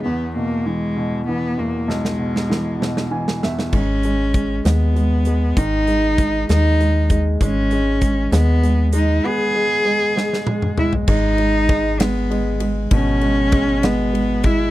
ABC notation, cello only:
X:1
M:6/8
L:1/8
Q:3/8=65
K:G#m
V:1 name="Cello"
B, A, G,2 B, A, | G,4- G, z | C3 B,3 | D3 D2 z |
C3 B,2 D | G4- G E | D3 B,2 z | C3 B,2 E |]